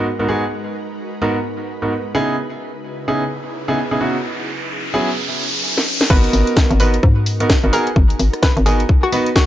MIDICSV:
0, 0, Header, 1, 7, 480
1, 0, Start_track
1, 0, Key_signature, 5, "minor"
1, 0, Tempo, 465116
1, 536, Time_signature, 4, 2, 24, 8
1, 9764, End_track
2, 0, Start_track
2, 0, Title_t, "Synth pluck"
2, 0, Program_c, 0, 84
2, 6296, Note_on_c, 0, 71, 98
2, 6456, Note_off_c, 0, 71, 0
2, 7018, Note_on_c, 0, 71, 92
2, 7177, Note_off_c, 0, 71, 0
2, 7978, Note_on_c, 0, 70, 95
2, 8137, Note_off_c, 0, 70, 0
2, 8696, Note_on_c, 0, 71, 89
2, 8824, Note_off_c, 0, 71, 0
2, 8937, Note_on_c, 0, 68, 95
2, 9096, Note_off_c, 0, 68, 0
2, 9321, Note_on_c, 0, 66, 100
2, 9465, Note_off_c, 0, 66, 0
2, 9656, Note_on_c, 0, 66, 93
2, 9764, Note_off_c, 0, 66, 0
2, 9764, End_track
3, 0, Start_track
3, 0, Title_t, "Ambient pad"
3, 0, Program_c, 1, 92
3, 0, Note_on_c, 1, 56, 83
3, 0, Note_on_c, 1, 63, 75
3, 0, Note_on_c, 1, 66, 74
3, 0, Note_on_c, 1, 70, 72
3, 0, Note_on_c, 1, 71, 94
3, 2180, Note_off_c, 1, 56, 0
3, 2180, Note_off_c, 1, 66, 0
3, 2180, Note_off_c, 1, 70, 0
3, 2215, Note_on_c, 1, 49, 78
3, 2217, Note_on_c, 1, 64, 73
3, 2217, Note_on_c, 1, 68, 73
3, 4335, Note_off_c, 1, 63, 0
3, 4354, Note_off_c, 1, 49, 0
3, 4377, Note_on_c, 1, 54, 75
3, 4377, Note_on_c, 1, 61, 71
3, 5295, Note_off_c, 1, 71, 0
3, 5305, Note_off_c, 1, 64, 0
3, 5305, Note_off_c, 1, 68, 0
3, 5325, Note_off_c, 1, 61, 0
3, 5327, Note_off_c, 1, 54, 0
3, 5337, Note_on_c, 1, 61, 76
3, 5337, Note_on_c, 1, 63, 70
3, 5337, Note_on_c, 1, 67, 71
3, 5338, Note_on_c, 1, 70, 81
3, 6284, Note_off_c, 1, 63, 0
3, 6285, Note_off_c, 1, 70, 0
3, 6287, Note_off_c, 1, 61, 0
3, 6287, Note_off_c, 1, 67, 0
3, 6297, Note_on_c, 1, 59, 84
3, 6297, Note_on_c, 1, 63, 78
3, 6297, Note_on_c, 1, 70, 93
3, 6298, Note_on_c, 1, 66, 78
3, 9764, Note_off_c, 1, 59, 0
3, 9764, Note_off_c, 1, 63, 0
3, 9764, Note_off_c, 1, 66, 0
3, 9764, Note_off_c, 1, 70, 0
3, 9764, End_track
4, 0, Start_track
4, 0, Title_t, "Grand piano"
4, 0, Program_c, 2, 0
4, 200, Note_on_c, 2, 44, 73
4, 200, Note_on_c, 2, 63, 69
4, 200, Note_on_c, 2, 66, 69
4, 201, Note_on_c, 2, 59, 70
4, 201, Note_on_c, 2, 70, 82
4, 279, Note_off_c, 2, 63, 0
4, 279, Note_off_c, 2, 66, 0
4, 280, Note_off_c, 2, 44, 0
4, 280, Note_off_c, 2, 59, 0
4, 282, Note_off_c, 2, 70, 0
4, 294, Note_on_c, 2, 63, 73
4, 295, Note_on_c, 2, 44, 81
4, 295, Note_on_c, 2, 59, 74
4, 295, Note_on_c, 2, 66, 76
4, 295, Note_on_c, 2, 68, 91
4, 440, Note_off_c, 2, 44, 0
4, 440, Note_off_c, 2, 59, 0
4, 440, Note_off_c, 2, 63, 0
4, 440, Note_off_c, 2, 66, 0
4, 440, Note_off_c, 2, 68, 0
4, 1255, Note_on_c, 2, 44, 92
4, 1255, Note_on_c, 2, 59, 84
4, 1255, Note_on_c, 2, 63, 83
4, 1255, Note_on_c, 2, 66, 83
4, 1255, Note_on_c, 2, 70, 101
4, 1400, Note_off_c, 2, 44, 0
4, 1400, Note_off_c, 2, 59, 0
4, 1400, Note_off_c, 2, 63, 0
4, 1400, Note_off_c, 2, 70, 0
4, 1401, Note_off_c, 2, 66, 0
4, 1879, Note_on_c, 2, 44, 71
4, 1879, Note_on_c, 2, 59, 63
4, 1879, Note_on_c, 2, 63, 66
4, 1879, Note_on_c, 2, 66, 62
4, 1879, Note_on_c, 2, 70, 78
4, 1976, Note_off_c, 2, 44, 0
4, 1976, Note_off_c, 2, 59, 0
4, 1976, Note_off_c, 2, 63, 0
4, 1976, Note_off_c, 2, 66, 0
4, 1976, Note_off_c, 2, 70, 0
4, 2215, Note_on_c, 2, 49, 94
4, 2215, Note_on_c, 2, 59, 87
4, 2215, Note_on_c, 2, 63, 91
4, 2215, Note_on_c, 2, 64, 86
4, 2215, Note_on_c, 2, 68, 109
4, 2418, Note_off_c, 2, 49, 0
4, 2418, Note_off_c, 2, 59, 0
4, 2418, Note_off_c, 2, 63, 0
4, 2418, Note_off_c, 2, 64, 0
4, 2418, Note_off_c, 2, 68, 0
4, 3176, Note_on_c, 2, 64, 76
4, 3177, Note_on_c, 2, 49, 83
4, 3177, Note_on_c, 2, 59, 70
4, 3177, Note_on_c, 2, 63, 77
4, 3177, Note_on_c, 2, 68, 90
4, 3321, Note_off_c, 2, 49, 0
4, 3321, Note_off_c, 2, 59, 0
4, 3321, Note_off_c, 2, 63, 0
4, 3321, Note_off_c, 2, 64, 0
4, 3321, Note_off_c, 2, 68, 0
4, 3800, Note_on_c, 2, 49, 79
4, 3800, Note_on_c, 2, 59, 80
4, 3800, Note_on_c, 2, 63, 75
4, 3800, Note_on_c, 2, 64, 72
4, 3800, Note_on_c, 2, 68, 94
4, 3896, Note_off_c, 2, 63, 0
4, 3897, Note_off_c, 2, 49, 0
4, 3897, Note_off_c, 2, 59, 0
4, 3897, Note_off_c, 2, 64, 0
4, 3897, Note_off_c, 2, 68, 0
4, 4038, Note_on_c, 2, 49, 78
4, 4038, Note_on_c, 2, 59, 69
4, 4038, Note_on_c, 2, 63, 72
4, 4039, Note_on_c, 2, 64, 68
4, 4039, Note_on_c, 2, 68, 82
4, 4120, Note_off_c, 2, 49, 0
4, 4120, Note_off_c, 2, 59, 0
4, 4120, Note_off_c, 2, 63, 0
4, 4120, Note_off_c, 2, 64, 0
4, 4121, Note_off_c, 2, 68, 0
4, 4135, Note_on_c, 2, 49, 82
4, 4135, Note_on_c, 2, 63, 73
4, 4135, Note_on_c, 2, 64, 72
4, 4135, Note_on_c, 2, 66, 90
4, 4136, Note_on_c, 2, 59, 77
4, 4280, Note_off_c, 2, 64, 0
4, 4281, Note_off_c, 2, 49, 0
4, 4281, Note_off_c, 2, 59, 0
4, 4281, Note_off_c, 2, 63, 0
4, 4281, Note_off_c, 2, 66, 0
4, 5095, Note_on_c, 2, 54, 90
4, 5095, Note_on_c, 2, 61, 80
4, 5095, Note_on_c, 2, 64, 82
4, 5096, Note_on_c, 2, 59, 84
4, 5096, Note_on_c, 2, 68, 100
4, 5240, Note_off_c, 2, 54, 0
4, 5240, Note_off_c, 2, 61, 0
4, 5240, Note_off_c, 2, 64, 0
4, 5241, Note_off_c, 2, 59, 0
4, 5241, Note_off_c, 2, 68, 0
4, 6297, Note_on_c, 2, 59, 98
4, 6297, Note_on_c, 2, 63, 92
4, 6297, Note_on_c, 2, 66, 92
4, 6297, Note_on_c, 2, 70, 116
4, 6978, Note_off_c, 2, 59, 0
4, 6978, Note_off_c, 2, 63, 0
4, 6978, Note_off_c, 2, 66, 0
4, 6978, Note_off_c, 2, 70, 0
4, 7017, Note_on_c, 2, 59, 81
4, 7017, Note_on_c, 2, 63, 75
4, 7017, Note_on_c, 2, 66, 76
4, 7017, Note_on_c, 2, 70, 87
4, 7161, Note_off_c, 2, 59, 0
4, 7161, Note_off_c, 2, 63, 0
4, 7161, Note_off_c, 2, 66, 0
4, 7161, Note_off_c, 2, 70, 0
4, 7640, Note_on_c, 2, 59, 85
4, 7640, Note_on_c, 2, 63, 78
4, 7640, Note_on_c, 2, 66, 77
4, 7640, Note_on_c, 2, 70, 93
4, 7737, Note_off_c, 2, 59, 0
4, 7737, Note_off_c, 2, 63, 0
4, 7737, Note_off_c, 2, 66, 0
4, 7737, Note_off_c, 2, 70, 0
4, 7881, Note_on_c, 2, 59, 76
4, 7881, Note_on_c, 2, 63, 74
4, 7881, Note_on_c, 2, 66, 73
4, 7881, Note_on_c, 2, 70, 85
4, 7959, Note_off_c, 2, 63, 0
4, 7960, Note_off_c, 2, 59, 0
4, 7960, Note_off_c, 2, 66, 0
4, 7962, Note_off_c, 2, 70, 0
4, 7975, Note_on_c, 2, 59, 86
4, 7975, Note_on_c, 2, 63, 78
4, 7975, Note_on_c, 2, 66, 79
4, 7975, Note_on_c, 2, 68, 95
4, 8120, Note_off_c, 2, 59, 0
4, 8120, Note_off_c, 2, 63, 0
4, 8120, Note_off_c, 2, 66, 0
4, 8120, Note_off_c, 2, 68, 0
4, 8936, Note_on_c, 2, 63, 87
4, 8936, Note_on_c, 2, 66, 85
4, 8937, Note_on_c, 2, 59, 94
4, 8937, Note_on_c, 2, 70, 107
4, 9081, Note_off_c, 2, 59, 0
4, 9081, Note_off_c, 2, 63, 0
4, 9081, Note_off_c, 2, 66, 0
4, 9081, Note_off_c, 2, 70, 0
4, 9417, Note_on_c, 2, 59, 99
4, 9417, Note_on_c, 2, 63, 90
4, 9417, Note_on_c, 2, 66, 94
4, 9417, Note_on_c, 2, 71, 108
4, 9561, Note_off_c, 2, 59, 0
4, 9561, Note_off_c, 2, 63, 0
4, 9561, Note_off_c, 2, 66, 0
4, 9561, Note_off_c, 2, 71, 0
4, 9764, End_track
5, 0, Start_track
5, 0, Title_t, "FM bass"
5, 0, Program_c, 3, 39
5, 6296, Note_on_c, 3, 32, 103
5, 6483, Note_off_c, 3, 32, 0
5, 6536, Note_on_c, 3, 32, 82
5, 6640, Note_off_c, 3, 32, 0
5, 6920, Note_on_c, 3, 32, 105
5, 7213, Note_off_c, 3, 32, 0
5, 7256, Note_on_c, 3, 44, 94
5, 7816, Note_off_c, 3, 44, 0
5, 7881, Note_on_c, 3, 32, 86
5, 7950, Note_off_c, 3, 32, 0
5, 8216, Note_on_c, 3, 32, 101
5, 8403, Note_off_c, 3, 32, 0
5, 8458, Note_on_c, 3, 32, 83
5, 8561, Note_off_c, 3, 32, 0
5, 8841, Note_on_c, 3, 32, 105
5, 9134, Note_off_c, 3, 32, 0
5, 9764, End_track
6, 0, Start_track
6, 0, Title_t, "Riser"
6, 0, Program_c, 4, 103
6, 2456, Note_on_c, 4, 60, 73
6, 6296, Note_off_c, 4, 60, 0
6, 9764, End_track
7, 0, Start_track
7, 0, Title_t, "Drums"
7, 5961, Note_on_c, 9, 38, 72
7, 6064, Note_off_c, 9, 38, 0
7, 6201, Note_on_c, 9, 38, 94
7, 6296, Note_on_c, 9, 36, 127
7, 6296, Note_on_c, 9, 49, 103
7, 6304, Note_off_c, 9, 38, 0
7, 6399, Note_off_c, 9, 36, 0
7, 6400, Note_off_c, 9, 49, 0
7, 6441, Note_on_c, 9, 42, 53
7, 6536, Note_on_c, 9, 46, 112
7, 6544, Note_off_c, 9, 42, 0
7, 6639, Note_off_c, 9, 46, 0
7, 6681, Note_on_c, 9, 42, 67
7, 6776, Note_on_c, 9, 36, 117
7, 6777, Note_on_c, 9, 38, 122
7, 6784, Note_off_c, 9, 42, 0
7, 6879, Note_off_c, 9, 36, 0
7, 6880, Note_off_c, 9, 38, 0
7, 6921, Note_on_c, 9, 42, 51
7, 7016, Note_on_c, 9, 46, 117
7, 7024, Note_off_c, 9, 42, 0
7, 7119, Note_off_c, 9, 46, 0
7, 7160, Note_on_c, 9, 42, 70
7, 7256, Note_on_c, 9, 36, 116
7, 7264, Note_off_c, 9, 42, 0
7, 7359, Note_off_c, 9, 36, 0
7, 7496, Note_on_c, 9, 46, 115
7, 7599, Note_off_c, 9, 46, 0
7, 7641, Note_on_c, 9, 42, 71
7, 7736, Note_on_c, 9, 36, 121
7, 7736, Note_on_c, 9, 38, 123
7, 7744, Note_off_c, 9, 42, 0
7, 7839, Note_off_c, 9, 36, 0
7, 7839, Note_off_c, 9, 38, 0
7, 7977, Note_on_c, 9, 46, 112
7, 8080, Note_off_c, 9, 46, 0
7, 8121, Note_on_c, 9, 42, 67
7, 8216, Note_on_c, 9, 36, 127
7, 8225, Note_off_c, 9, 42, 0
7, 8319, Note_off_c, 9, 36, 0
7, 8362, Note_on_c, 9, 42, 51
7, 8457, Note_on_c, 9, 46, 114
7, 8465, Note_off_c, 9, 42, 0
7, 8560, Note_off_c, 9, 46, 0
7, 8602, Note_on_c, 9, 37, 60
7, 8602, Note_on_c, 9, 42, 63
7, 8696, Note_on_c, 9, 36, 127
7, 8697, Note_on_c, 9, 38, 125
7, 8705, Note_off_c, 9, 37, 0
7, 8705, Note_off_c, 9, 42, 0
7, 8799, Note_off_c, 9, 36, 0
7, 8800, Note_off_c, 9, 38, 0
7, 8842, Note_on_c, 9, 42, 50
7, 8937, Note_on_c, 9, 46, 113
7, 8946, Note_off_c, 9, 42, 0
7, 9040, Note_off_c, 9, 46, 0
7, 9082, Note_on_c, 9, 42, 68
7, 9176, Note_on_c, 9, 36, 125
7, 9185, Note_off_c, 9, 42, 0
7, 9279, Note_off_c, 9, 36, 0
7, 9321, Note_on_c, 9, 37, 71
7, 9417, Note_on_c, 9, 46, 109
7, 9424, Note_off_c, 9, 37, 0
7, 9520, Note_off_c, 9, 46, 0
7, 9561, Note_on_c, 9, 42, 69
7, 9656, Note_on_c, 9, 36, 120
7, 9657, Note_on_c, 9, 38, 125
7, 9664, Note_off_c, 9, 42, 0
7, 9759, Note_off_c, 9, 36, 0
7, 9760, Note_off_c, 9, 38, 0
7, 9764, End_track
0, 0, End_of_file